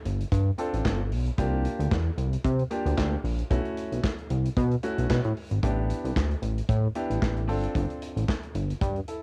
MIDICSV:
0, 0, Header, 1, 4, 480
1, 0, Start_track
1, 0, Tempo, 530973
1, 1249, Time_signature, 4, 2, 24, 8
1, 8340, End_track
2, 0, Start_track
2, 0, Title_t, "Grand piano"
2, 0, Program_c, 0, 0
2, 523, Note_on_c, 0, 60, 78
2, 527, Note_on_c, 0, 62, 74
2, 529, Note_on_c, 0, 65, 82
2, 532, Note_on_c, 0, 69, 86
2, 911, Note_off_c, 0, 60, 0
2, 913, Note_off_c, 0, 62, 0
2, 914, Note_off_c, 0, 65, 0
2, 915, Note_off_c, 0, 69, 0
2, 1245, Note_on_c, 0, 58, 86
2, 1249, Note_on_c, 0, 62, 78
2, 1251, Note_on_c, 0, 65, 77
2, 1252, Note_on_c, 0, 67, 95
2, 1745, Note_off_c, 0, 58, 0
2, 1746, Note_off_c, 0, 62, 0
2, 1747, Note_off_c, 0, 65, 0
2, 1748, Note_off_c, 0, 67, 0
2, 2446, Note_on_c, 0, 58, 85
2, 2448, Note_on_c, 0, 62, 80
2, 2451, Note_on_c, 0, 65, 71
2, 2453, Note_on_c, 0, 67, 96
2, 2832, Note_off_c, 0, 58, 0
2, 2833, Note_off_c, 0, 62, 0
2, 2835, Note_off_c, 0, 65, 0
2, 2836, Note_off_c, 0, 67, 0
2, 3167, Note_on_c, 0, 57, 87
2, 3172, Note_on_c, 0, 61, 72
2, 3172, Note_on_c, 0, 64, 78
2, 3175, Note_on_c, 0, 66, 93
2, 3666, Note_off_c, 0, 57, 0
2, 3668, Note_off_c, 0, 61, 0
2, 3668, Note_off_c, 0, 64, 0
2, 3670, Note_off_c, 0, 66, 0
2, 4367, Note_on_c, 0, 57, 75
2, 4368, Note_on_c, 0, 61, 73
2, 4372, Note_on_c, 0, 64, 71
2, 4373, Note_on_c, 0, 66, 92
2, 4753, Note_off_c, 0, 57, 0
2, 4754, Note_off_c, 0, 61, 0
2, 4755, Note_off_c, 0, 64, 0
2, 4756, Note_off_c, 0, 66, 0
2, 5087, Note_on_c, 0, 59, 82
2, 5091, Note_on_c, 0, 62, 78
2, 5092, Note_on_c, 0, 64, 73
2, 5095, Note_on_c, 0, 67, 89
2, 5586, Note_off_c, 0, 59, 0
2, 5588, Note_off_c, 0, 62, 0
2, 5588, Note_off_c, 0, 64, 0
2, 5590, Note_off_c, 0, 67, 0
2, 6285, Note_on_c, 0, 59, 85
2, 6287, Note_on_c, 0, 62, 77
2, 6289, Note_on_c, 0, 64, 77
2, 6290, Note_on_c, 0, 67, 94
2, 6672, Note_off_c, 0, 59, 0
2, 6673, Note_off_c, 0, 62, 0
2, 6674, Note_off_c, 0, 64, 0
2, 6674, Note_off_c, 0, 67, 0
2, 6760, Note_on_c, 0, 60, 88
2, 6764, Note_on_c, 0, 62, 79
2, 6767, Note_on_c, 0, 65, 78
2, 6769, Note_on_c, 0, 69, 88
2, 7538, Note_off_c, 0, 60, 0
2, 7540, Note_off_c, 0, 62, 0
2, 7542, Note_off_c, 0, 65, 0
2, 7543, Note_off_c, 0, 69, 0
2, 8208, Note_on_c, 0, 69, 59
2, 8211, Note_on_c, 0, 64, 51
2, 8336, Note_off_c, 0, 69, 0
2, 8338, Note_off_c, 0, 64, 0
2, 8340, End_track
3, 0, Start_track
3, 0, Title_t, "Analog synth bass"
3, 0, Program_c, 1, 38
3, 48, Note_on_c, 1, 31, 82
3, 219, Note_off_c, 1, 31, 0
3, 288, Note_on_c, 1, 43, 114
3, 459, Note_off_c, 1, 43, 0
3, 662, Note_on_c, 1, 33, 95
3, 738, Note_off_c, 1, 33, 0
3, 770, Note_on_c, 1, 31, 99
3, 1008, Note_on_c, 1, 35, 105
3, 1022, Note_off_c, 1, 31, 0
3, 1179, Note_off_c, 1, 35, 0
3, 1249, Note_on_c, 1, 36, 103
3, 1516, Note_off_c, 1, 36, 0
3, 1621, Note_on_c, 1, 38, 87
3, 1697, Note_off_c, 1, 38, 0
3, 1731, Note_on_c, 1, 40, 91
3, 1901, Note_off_c, 1, 40, 0
3, 1966, Note_on_c, 1, 36, 85
3, 2138, Note_off_c, 1, 36, 0
3, 2209, Note_on_c, 1, 48, 106
3, 2380, Note_off_c, 1, 48, 0
3, 2582, Note_on_c, 1, 38, 101
3, 2658, Note_off_c, 1, 38, 0
3, 2691, Note_on_c, 1, 38, 92
3, 2861, Note_off_c, 1, 38, 0
3, 2929, Note_on_c, 1, 34, 86
3, 3100, Note_off_c, 1, 34, 0
3, 3170, Note_on_c, 1, 35, 110
3, 3265, Note_off_c, 1, 35, 0
3, 3545, Note_on_c, 1, 35, 87
3, 3620, Note_off_c, 1, 35, 0
3, 3891, Note_on_c, 1, 36, 88
3, 4061, Note_off_c, 1, 36, 0
3, 4129, Note_on_c, 1, 47, 115
3, 4300, Note_off_c, 1, 47, 0
3, 4505, Note_on_c, 1, 35, 99
3, 4580, Note_off_c, 1, 35, 0
3, 4612, Note_on_c, 1, 47, 100
3, 4707, Note_off_c, 1, 47, 0
3, 4744, Note_on_c, 1, 45, 102
3, 4819, Note_off_c, 1, 45, 0
3, 4983, Note_on_c, 1, 32, 100
3, 5058, Note_off_c, 1, 32, 0
3, 5090, Note_on_c, 1, 33, 108
3, 5356, Note_off_c, 1, 33, 0
3, 5464, Note_on_c, 1, 36, 90
3, 5539, Note_off_c, 1, 36, 0
3, 5571, Note_on_c, 1, 38, 104
3, 5741, Note_off_c, 1, 38, 0
3, 5806, Note_on_c, 1, 33, 92
3, 5978, Note_off_c, 1, 33, 0
3, 6046, Note_on_c, 1, 45, 114
3, 6218, Note_off_c, 1, 45, 0
3, 6421, Note_on_c, 1, 33, 84
3, 6497, Note_off_c, 1, 33, 0
3, 6531, Note_on_c, 1, 33, 91
3, 6766, Note_on_c, 1, 31, 101
3, 6780, Note_off_c, 1, 33, 0
3, 6938, Note_off_c, 1, 31, 0
3, 7010, Note_on_c, 1, 31, 116
3, 7105, Note_off_c, 1, 31, 0
3, 7379, Note_on_c, 1, 33, 82
3, 7456, Note_off_c, 1, 33, 0
3, 7724, Note_on_c, 1, 31, 87
3, 7897, Note_off_c, 1, 31, 0
3, 7967, Note_on_c, 1, 43, 118
3, 8139, Note_off_c, 1, 43, 0
3, 8340, End_track
4, 0, Start_track
4, 0, Title_t, "Drums"
4, 49, Note_on_c, 9, 42, 79
4, 139, Note_off_c, 9, 42, 0
4, 187, Note_on_c, 9, 42, 51
4, 277, Note_off_c, 9, 42, 0
4, 288, Note_on_c, 9, 36, 106
4, 290, Note_on_c, 9, 42, 94
4, 378, Note_off_c, 9, 36, 0
4, 381, Note_off_c, 9, 42, 0
4, 527, Note_on_c, 9, 42, 67
4, 618, Note_off_c, 9, 42, 0
4, 666, Note_on_c, 9, 42, 51
4, 756, Note_off_c, 9, 42, 0
4, 770, Note_on_c, 9, 36, 105
4, 774, Note_on_c, 9, 38, 98
4, 776, Note_on_c, 9, 39, 87
4, 861, Note_off_c, 9, 36, 0
4, 864, Note_off_c, 9, 38, 0
4, 866, Note_off_c, 9, 39, 0
4, 1013, Note_on_c, 9, 46, 73
4, 1103, Note_off_c, 9, 46, 0
4, 1144, Note_on_c, 9, 42, 47
4, 1235, Note_off_c, 9, 42, 0
4, 1250, Note_on_c, 9, 36, 101
4, 1250, Note_on_c, 9, 42, 87
4, 1340, Note_off_c, 9, 36, 0
4, 1341, Note_off_c, 9, 42, 0
4, 1492, Note_on_c, 9, 42, 69
4, 1582, Note_off_c, 9, 42, 0
4, 1630, Note_on_c, 9, 42, 49
4, 1720, Note_off_c, 9, 42, 0
4, 1731, Note_on_c, 9, 36, 127
4, 1735, Note_on_c, 9, 38, 120
4, 1737, Note_on_c, 9, 39, 89
4, 1821, Note_off_c, 9, 36, 0
4, 1825, Note_off_c, 9, 38, 0
4, 1828, Note_off_c, 9, 39, 0
4, 1970, Note_on_c, 9, 42, 74
4, 2060, Note_off_c, 9, 42, 0
4, 2106, Note_on_c, 9, 42, 57
4, 2197, Note_off_c, 9, 42, 0
4, 2209, Note_on_c, 9, 36, 111
4, 2212, Note_on_c, 9, 42, 96
4, 2300, Note_off_c, 9, 36, 0
4, 2302, Note_off_c, 9, 42, 0
4, 2344, Note_on_c, 9, 42, 34
4, 2435, Note_off_c, 9, 42, 0
4, 2448, Note_on_c, 9, 42, 71
4, 2539, Note_off_c, 9, 42, 0
4, 2588, Note_on_c, 9, 42, 54
4, 2678, Note_off_c, 9, 42, 0
4, 2692, Note_on_c, 9, 36, 94
4, 2695, Note_on_c, 9, 38, 96
4, 2697, Note_on_c, 9, 39, 80
4, 2782, Note_off_c, 9, 36, 0
4, 2785, Note_off_c, 9, 38, 0
4, 2788, Note_off_c, 9, 39, 0
4, 2935, Note_on_c, 9, 46, 75
4, 3026, Note_off_c, 9, 46, 0
4, 3064, Note_on_c, 9, 42, 50
4, 3154, Note_off_c, 9, 42, 0
4, 3171, Note_on_c, 9, 36, 107
4, 3171, Note_on_c, 9, 42, 93
4, 3261, Note_off_c, 9, 36, 0
4, 3261, Note_off_c, 9, 42, 0
4, 3303, Note_on_c, 9, 42, 34
4, 3393, Note_off_c, 9, 42, 0
4, 3412, Note_on_c, 9, 42, 70
4, 3502, Note_off_c, 9, 42, 0
4, 3549, Note_on_c, 9, 42, 51
4, 3640, Note_off_c, 9, 42, 0
4, 3651, Note_on_c, 9, 36, 123
4, 3656, Note_on_c, 9, 38, 110
4, 3658, Note_on_c, 9, 39, 82
4, 3741, Note_off_c, 9, 36, 0
4, 3746, Note_off_c, 9, 38, 0
4, 3749, Note_off_c, 9, 39, 0
4, 3784, Note_on_c, 9, 42, 33
4, 3875, Note_off_c, 9, 42, 0
4, 3891, Note_on_c, 9, 42, 80
4, 3981, Note_off_c, 9, 42, 0
4, 4029, Note_on_c, 9, 42, 52
4, 4120, Note_off_c, 9, 42, 0
4, 4129, Note_on_c, 9, 36, 110
4, 4132, Note_on_c, 9, 42, 94
4, 4220, Note_off_c, 9, 36, 0
4, 4222, Note_off_c, 9, 42, 0
4, 4263, Note_on_c, 9, 42, 34
4, 4353, Note_off_c, 9, 42, 0
4, 4369, Note_on_c, 9, 42, 73
4, 4459, Note_off_c, 9, 42, 0
4, 4506, Note_on_c, 9, 42, 56
4, 4596, Note_off_c, 9, 42, 0
4, 4611, Note_on_c, 9, 36, 96
4, 4615, Note_on_c, 9, 38, 106
4, 4617, Note_on_c, 9, 39, 84
4, 4701, Note_off_c, 9, 36, 0
4, 4705, Note_off_c, 9, 38, 0
4, 4708, Note_off_c, 9, 39, 0
4, 4743, Note_on_c, 9, 42, 31
4, 4833, Note_off_c, 9, 42, 0
4, 4855, Note_on_c, 9, 46, 71
4, 4945, Note_off_c, 9, 46, 0
4, 4984, Note_on_c, 9, 42, 52
4, 5074, Note_off_c, 9, 42, 0
4, 5090, Note_on_c, 9, 36, 110
4, 5092, Note_on_c, 9, 42, 93
4, 5180, Note_off_c, 9, 36, 0
4, 5182, Note_off_c, 9, 42, 0
4, 5333, Note_on_c, 9, 42, 69
4, 5424, Note_off_c, 9, 42, 0
4, 5471, Note_on_c, 9, 42, 51
4, 5562, Note_off_c, 9, 42, 0
4, 5571, Note_on_c, 9, 36, 119
4, 5577, Note_on_c, 9, 38, 112
4, 5580, Note_on_c, 9, 39, 94
4, 5661, Note_off_c, 9, 36, 0
4, 5668, Note_off_c, 9, 38, 0
4, 5670, Note_off_c, 9, 39, 0
4, 5706, Note_on_c, 9, 42, 34
4, 5796, Note_off_c, 9, 42, 0
4, 5810, Note_on_c, 9, 42, 83
4, 5901, Note_off_c, 9, 42, 0
4, 5950, Note_on_c, 9, 42, 54
4, 6040, Note_off_c, 9, 42, 0
4, 6048, Note_on_c, 9, 36, 111
4, 6051, Note_on_c, 9, 42, 85
4, 6138, Note_off_c, 9, 36, 0
4, 6142, Note_off_c, 9, 42, 0
4, 6287, Note_on_c, 9, 42, 65
4, 6377, Note_off_c, 9, 42, 0
4, 6426, Note_on_c, 9, 42, 52
4, 6517, Note_off_c, 9, 42, 0
4, 6530, Note_on_c, 9, 36, 105
4, 6535, Note_on_c, 9, 38, 100
4, 6537, Note_on_c, 9, 39, 75
4, 6620, Note_off_c, 9, 36, 0
4, 6625, Note_off_c, 9, 38, 0
4, 6628, Note_off_c, 9, 39, 0
4, 6663, Note_on_c, 9, 42, 35
4, 6753, Note_off_c, 9, 42, 0
4, 6774, Note_on_c, 9, 46, 74
4, 6864, Note_off_c, 9, 46, 0
4, 6905, Note_on_c, 9, 42, 50
4, 6995, Note_off_c, 9, 42, 0
4, 7009, Note_on_c, 9, 36, 112
4, 7010, Note_on_c, 9, 42, 88
4, 7099, Note_off_c, 9, 36, 0
4, 7101, Note_off_c, 9, 42, 0
4, 7144, Note_on_c, 9, 42, 32
4, 7234, Note_off_c, 9, 42, 0
4, 7252, Note_on_c, 9, 42, 78
4, 7342, Note_off_c, 9, 42, 0
4, 7389, Note_on_c, 9, 42, 54
4, 7479, Note_off_c, 9, 42, 0
4, 7489, Note_on_c, 9, 36, 125
4, 7494, Note_on_c, 9, 38, 108
4, 7497, Note_on_c, 9, 39, 88
4, 7580, Note_off_c, 9, 36, 0
4, 7585, Note_off_c, 9, 38, 0
4, 7587, Note_off_c, 9, 39, 0
4, 7623, Note_on_c, 9, 42, 35
4, 7713, Note_off_c, 9, 42, 0
4, 7729, Note_on_c, 9, 42, 85
4, 7819, Note_off_c, 9, 42, 0
4, 7867, Note_on_c, 9, 42, 52
4, 7958, Note_off_c, 9, 42, 0
4, 7967, Note_on_c, 9, 36, 111
4, 7969, Note_on_c, 9, 42, 91
4, 8058, Note_off_c, 9, 36, 0
4, 8059, Note_off_c, 9, 42, 0
4, 8101, Note_on_c, 9, 42, 34
4, 8191, Note_off_c, 9, 42, 0
4, 8208, Note_on_c, 9, 42, 69
4, 8298, Note_off_c, 9, 42, 0
4, 8340, End_track
0, 0, End_of_file